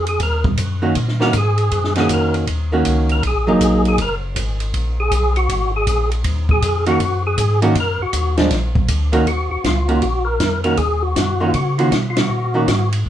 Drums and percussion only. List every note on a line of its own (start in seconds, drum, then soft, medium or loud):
0.07 ride soft
0.20 kick soft
0.20 ride medium
0.44 kick medium
0.57 kick soft
0.57 hi-hat pedal medium
0.57 ride medium
0.95 kick soft
0.95 ride medium
1.08 snare soft
1.21 snare soft
1.33 kick soft
1.33 hi-hat pedal medium
1.33 ride medium
1.58 ride soft
1.72 kick soft
1.72 ride medium
1.84 snare soft
1.95 snare soft
1.95 ride soft
2.09 kick soft
2.09 hi-hat pedal medium
2.09 ride medium
2.34 ride soft
2.47 kick soft
2.47 ride medium
2.85 kick soft
2.85 hi-hat pedal soft
2.85 ride medium
3.09 ride soft
3.23 kick soft
3.23 ride medium
3.61 kick soft
3.61 hi-hat pedal medium
3.61 ride medium
3.85 ride soft
3.98 kick soft
3.98 ride medium
4.36 kick soft
4.36 hi-hat pedal medium
4.36 ride medium
4.60 ride soft
4.74 kick soft
4.74 ride medium
5.11 kick soft
5.11 hi-hat pedal medium
5.11 ride medium
5.36 ride soft
5.49 kick soft
5.49 ride medium
5.87 kick soft
5.87 hi-hat pedal medium
5.87 ride medium
6.12 ride soft
6.24 kick soft
6.24 ride medium
6.49 kick soft
6.62 kick soft
6.62 hi-hat pedal medium
6.62 ride medium
6.86 ride soft
7.00 kick soft
7.00 ride medium
7.38 kick soft
7.38 hi-hat pedal medium
7.38 ride medium
7.62 ride soft
7.75 kick soft
7.75 ride medium
8.13 kick soft
8.13 hi-hat pedal medium
8.13 ride medium
8.38 snare medium
8.38 ride soft
8.51 kick soft
8.51 snare soft
8.51 ride medium
8.75 kick medium
8.88 kick soft
8.88 hi-hat pedal soft
8.88 ride medium
9.13 ride soft
9.27 kick soft
9.27 ride medium
9.64 kick soft
9.64 snare medium
9.64 hi-hat pedal medium
9.64 ride medium
9.89 ride soft
10.02 kick soft
10.02 ride medium
10.40 kick soft
10.40 snare medium
10.40 hi-hat pedal medium
10.40 ride medium
10.64 ride soft
10.77 kick soft
10.77 ride medium
11.16 kick soft
11.16 snare medium
11.16 hi-hat pedal soft
11.16 ride medium
11.54 kick soft
11.54 ride medium
11.79 ride soft
11.92 kick soft
11.92 snare medium
11.92 hi-hat pedal medium
11.92 ride medium
12.17 snare medium
12.17 ride medium
12.68 kick soft
12.68 snare medium
12.68 hi-hat pedal medium
12.68 ride medium
12.93 ride medium
13.06 kick soft